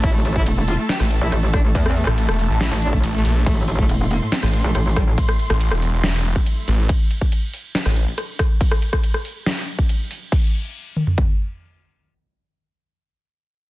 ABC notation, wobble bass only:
X:1
M:4/4
L:1/16
Q:1/4=140
K:Cmix
V:1 name="Wobble bass" clef=bass
A,,,4 E,,,3 z4 B,,, A,,,4 | E,,3 z6 A,,,3 z4 | A,,,4 E,,,3 z4 B,,, A,,,4 | z16 |
z16 | z16 | z16 | z16 |]